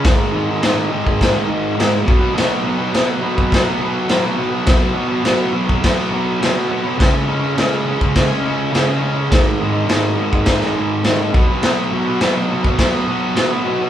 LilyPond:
<<
  \new Staff \with { instrumentName = "Distorted electric guitar" } { \clef bass \time 4/4 \key b \lydian \tempo 4 = 104 <gis, dis gis>8 <gis, dis gis>16 <dis gis>16 <gis, dis gis>8 <gis, dis gis>16 <dis gis>8 <dis gis>16 <gis, dis gis>8 <gis, dis gis>16 <dis gis>16 <b, fis b>16 <fis b>16 | <b, fis b>8 <b, fis b>16 <fis b>16 <b, fis b>8 <b, fis b>16 <fis b>8 <fis b>16 <b, fis b>8 <b, fis b>16 <fis b>16 <b, fis b>16 <fis b>16 | <b, fis b>8 <b, fis b>16 <fis b>16 <b, fis b>8 <b, fis b>16 <fis b>8 <fis b>16 <b, fis b>8 <b, fis b>16 <fis b>16 <b, fis b>16 <fis b>16 | <cis gis cis'>8 <cis gis cis'>16 <gis cis'>16 <cis gis cis'>8 <cis gis cis'>16 <gis cis'>8 <gis cis'>16 <cis gis cis'>8 <cis gis cis'>16 <gis cis'>16 <cis gis cis'>16 <gis cis'>16 |
<gis, dis gis>8 <gis, dis gis>16 <dis gis>16 <gis, dis gis>8 <gis, dis gis>16 <dis gis>8 <dis gis>16 <gis, dis gis>8 <gis, dis gis>16 <dis gis>16 <b, fis b>16 <fis b>16 | <b, fis b>8 <b, fis b>16 <fis b>16 <b, fis b>8 <b, fis b>16 <fis b>8 <fis b>16 <b, fis b>8 <b, fis b>16 <fis b>16 <b, fis b>16 <fis b>16 | }
  \new DrumStaff \with { instrumentName = "Drums" } \drummode { \time 4/4 <cymc bd sn>4 <cymc sn>8. bd16 <cymc bd sn>4 <cymc sn>8 bd8 | <cymc sn>4 <cymc sn>8. bd16 <cymc bd sn>4 <cymc sn>4 | <cymc bd sn>4 <cymc sn>8. bd16 <cymc bd sn>4 <cymc sn>4 | <cymc bd sn>4 <cymc sn>8. bd16 <cymc bd sn>4 <cymc sn>4 |
<cymc bd sn>4 <cymc sn>8. bd16 <cymc bd sn>4 <cymc sn>8 bd8 | <cymc sn>4 <cymc sn>8. bd16 <cymc bd sn>4 <cymc sn>4 | }
>>